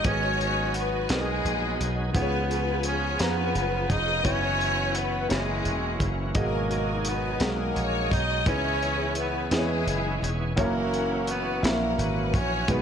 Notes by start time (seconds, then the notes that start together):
0.04 G#1 G#2 F#3 B3 C#4 D#4 F#4 G#4 D#5, kick, closed hi-hat
0.08 F#4 C#5
0.41 C#4, closed hi-hat
0.74 B3, closed hi-hat
0.78 B4
1.09 B1 G#3 B3 F#4 G#4 A#4, snare, closed hi-hat
1.14 B3 D#4 G#4
1.45 A#1, closed hi-hat
1.80 B1, closed hi-hat
2.13 C#2 C#3 F3 B3 C#4 F4 G#4 B4, kick, closed hi-hat
2.18 F4 B4
2.22 C#5
2.51 B4, closed hi-hat
2.83 C#4 C#5, closed hi-hat
3.19 F2 B3 F4 G#4 B4 A#5, snare, closed hi-hat
3.55 F#1, closed hi-hat
3.90 F1 D#4 D#5, kick, closed hi-hat
4.23 F#1 E3 B3 C#4 E4 F#4 C#5, kick, closed hi-hat
4.61 closed hi-hat
4.95 B3 B4, closed hi-hat
5.29 F#1 E3 G#3 A#3 C#4 E4 F#4 G#4 C#5, snare, closed hi-hat
5.65 E1, closed hi-hat
6.00 F#1, kick, closed hi-hat
6.34 G#1 G#2 B2 F#3 G#3 A#3 D#4 F#4 G4 G#4 A#4 D#5, kick, closed hi-hat
6.38 D#4 F#4 G#4
6.71 A#4, closed hi-hat
7.05 B3, closed hi-hat
7.09 B4
7.40 B1 G#3 A#3 F#4 G#4 A#4 F#5, snare, closed hi-hat
7.76 A#1 C#5, closed hi-hat
8.12 B1 D#4 D#5, kick, closed hi-hat
8.46 C#2 C#3 E3 B3 C#4 E4 G#4 C#5, kick, closed hi-hat
8.83 closed hi-hat
9.15 B4, closed hi-hat
9.20 B3
9.51 E2 B3 E4 G#4 B4, snare, closed hi-hat
9.55 G#3 B3 E4 G#4 C#5
9.87 F#1, closed hi-hat
10.22 E1, closed hi-hat
10.56 F#1 E3 G#3 A#3 C#4 E4 F#4 A#4 C#5, kick, closed hi-hat
10.64 F#3
10.94 closed hi-hat
11.27 B3 B4, closed hi-hat
11.62 A#1 A#2 A#3 E4 F#4 A#4 E5, snare, closed hi-hat
11.98 G#1 B4, closed hi-hat
12.34 A#1 C#4 C#5, kick, closed hi-hat
12.68 B1 B2 D#3 G#3 B3 D#4 F#4 B4, kick, closed hi-hat
12.72 B3 D#4 G#4